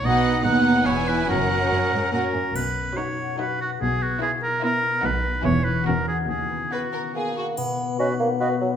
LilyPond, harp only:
\new Staff \with { instrumentName = "Harp" } { \time 3/4 \key b \major \tempo 4 = 144 <b, b b'>8 b8 fis'8 b'8 e,8 <e' gis'>8 | fis,8 fis8 cis'8 fis'8 cis'8 fis'8 | b,8 b8 dis'8 fis'8 b'8 fis'8 | b,8 b8 e'8 gis'8 b'8 gis'8 |
b,8 <b dis'>8 e8 <b e'>8 e8 <cis' fis'>8 | dis8 b8 fis'8 b8 b'8 fis'8 | b,8 b8 dis'8 fis'8 b'8 fis'8 | }